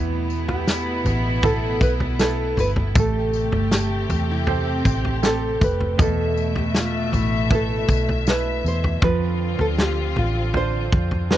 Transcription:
Already playing: fingered electric bass E2, string section B2 A3 E4, felt piano E3, cello section B3, nylon-string guitar E4
0.30 tambourine
0.48 nylon-string guitar G4, floor tom
0.68 snare, tambourine
1.05 fingered electric bass A1, floor tom, tambourine
1.43 felt piano E4 A4 B4, nylon-string guitar A4, kick, floor tom, tambourine
1.81 fingered electric bass B1, nylon-string guitar B4, kick, tambourine
2.00 floor tom
2.19 felt piano E4 A4 B4, nylon-string guitar A4, snare, tambourine
2.57 fingered electric bass G1, nylon-string guitar B4, floor tom, tambourine
2.76 floor tom
2.95 fingered electric bass A1, string section C3 G4, cello section A3, felt piano A3, kick, floor tom, tambourine
2.99 nylon-string guitar A4
3.33 tambourine
3.52 fingered electric bass G1, floor tom
3.72 nylon-string guitar G4, snare, tambourine
4.09 fingered electric bass E2, floor tom, tambourine
4.31 nylon-string guitar E4
4.47 cello section C4, felt piano G4 A4 C5, floor tom
4.85 fingered electric bass A1, kick, tambourine
5.05 floor tom
5.22 felt piano C4 G4 A4, nylon-string guitar A4, snare, tambourine
5.61 fingered electric bass F1, nylon-string guitar B4, kick, floor tom, tambourine
5.81 floor tom
5.98 fingered electric bass E2, felt piano B2, string section B2 E5, cello section A3, nylon-string guitar A4, kick, floor tom, tambourine
6.37 tambourine
6.56 nylon-string guitar G4, floor tom
6.75 nylon-string guitar F4, snare, tambourine
7.12 fingered electric bass A1, nylon-string guitar E4, floor tom, tambourine
7.50 felt piano E4 A4 B4, kick, floor tom, tambourine
7.55 nylon-string guitar A4
7.88 fingered electric bass B1, kick, tambourine
8.09 floor tom
8.27 felt piano E4 A4, nylon-string guitar B4, snare, tambourine
8.65 fingered electric bass E2, nylon-string guitar C5, tambourine
8.84 floor tom
9.02 fingered electric bass F2, string section D3 C4 F4, felt piano F3, nylon-string guitar B4, kick, floor tom
9.59 fingered electric bass D2, nylon-string guitar A4, floor tom
9.78 nylon-string guitar G4, snare
10.16 fingered electric bass A1, nylon-string guitar F4, floor tom
10.54 felt piano D4 F4 C5, nylon-string guitar C5, floor tom
10.92 fingered electric bass F2, kick
11.11 floor tom
11.30 felt piano C4 D4 F4, nylon-string guitar B4, snare

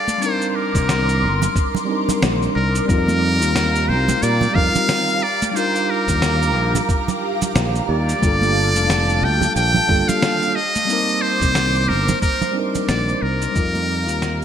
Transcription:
Already playing: analog synth pad A#4 C6 D6, muted trumpet D5
0.08 high conga, cabasa
0.18 tine electric piano G3 C4 D4, muted trumpet C5, cabasa
0.24 tine electric piano D#4 A#4
0.42 cabasa
0.50 muted trumpet C5
0.56 muted trumpet A#4
0.75 fingered electric bass C2, kick, cabasa
0.89 snare, cabasa
1.09 cabasa
1.23 fingered electric bass G1
1.42 low conga, cabasa
1.56 kick, cabasa
1.75 low conga, cabasa
1.85 tine electric piano G3 C4 D4
1.90 tine electric piano D#4 A#4
2.09 low conga, cabasa
2.23 fingered electric bass A#1, snare, cabasa
2.42 cabasa
2.55 fingered electric bass C2, muted trumpet A#4
2.75 cabasa
2.85 fingered electric bass F2, tine electric piano G3 C4, muted trumpet A#4, analog synth pad F5 A#5, kick
2.89 tine electric piano D#4 F4 A#4, analog synth pad G4, cabasa
3.08 high conga, cabasa
3.42 fingered electric bass D#2, cabasa
3.56 snare, cabasa
3.75 cabasa
3.88 fingered electric bass C2, muted trumpet C5
4.08 high conga, low conga, cabasa
4.23 fingered electric bass A#2, muted trumpet D5, cabasa
4.41 low conga, cabasa
4.53 fingered electric bass F2, tine electric piano G3 C4 D#4 F4, muted trumpet F5, kick
4.57 tine electric piano A#4
4.75 low conga, cabasa
4.89 snare, cabasa
5.09 cabasa
5.22 muted trumpet D5, analog synth pad A#5 D6
5.42 high conga, cabasa
5.50 tine electric piano G3 D4, muted trumpet D5
5.55 tine electric piano D#4 F4 A#4, muted trumpet C5, cabasa
5.75 cabasa
5.90 muted trumpet A#4
6.08 fingered electric bass D#2, kick, cabasa
6.22 snare, cabasa
6.42 cabasa
6.55 fingered electric bass A#1
6.75 low conga, cabasa
6.89 kick, cabasa
7.08 low conga, cabasa
7.42 low conga, cabasa
7.56 fingered electric bass A#1, snare, cabasa
7.75 cabasa
7.89 fingered electric bass D#2, muted trumpet D5
8.09 cabasa
8.19 fingered electric bass G1, tine electric piano G3 A#3, analog synth pad A5, kick
8.23 tine electric piano D4 F4 A4, cabasa
8.42 high conga, cabasa
8.75 fingered electric bass F1, cabasa
8.90 snare, cabasa
9.09 cabasa
9.22 fingered electric bass D2, muted trumpet G5
9.41 high conga, low conga, cabasa
9.56 fingered electric bass A#1, muted trumpet G5, cabasa
9.74 low conga, cabasa
9.87 fingered electric bass G1, tine electric piano G3 A#3 D4 F4 A4, kick
10.08 muted trumpet F5, low conga, cabasa
10.22 snare, cabasa
10.42 cabasa
10.55 analog synth pad C5 D6, muted trumpet D#5
10.75 high conga, cabasa
10.85 tine electric piano G3 A#3 C4
10.90 tine electric piano D#4 A#4, cabasa
11.09 cabasa
11.22 muted trumpet C5
11.42 fingered electric bass C2, kick, cabasa
11.55 snare, cabasa
11.75 cabasa
11.88 fingered electric bass G1, muted trumpet A#4
12.08 low conga, cabasa
12.22 muted trumpet A#4, kick, cabasa
12.42 low conga, cabasa
12.51 tine electric piano G3 C4
12.55 tine electric piano D4 D#4 A#4
12.75 low conga, cabasa
12.88 fingered electric bass A#1, muted trumpet D5, snare, cabasa
13.09 cabasa
13.22 fingered electric bass C2, muted trumpet A#4
13.42 cabasa
13.52 tine electric piano G3 C4, analog synth pad G4 F5 A#5, cabasa
13.56 fingered electric bass F2, tine electric piano D#4 F4 A#4, kick
13.75 high conga, cabasa
14.08 fingered electric bass D#2, cabasa
14.22 snare, cabasa

